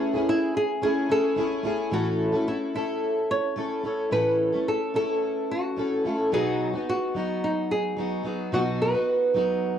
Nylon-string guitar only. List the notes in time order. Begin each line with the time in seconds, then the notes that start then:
0.29 E4
0.57 G#4
0.83 G#4
1.11 A4
1.93 F#4
2.48 E4
2.75 E4
3.31 C#5
4.12 B4
4.68 A4
4.96 A4
5.51 F#4
6.12 E4
6.34 G#4
6.89 F#4
7.44 D#4
7.71 G#4
8.54 F#4
8.82 B4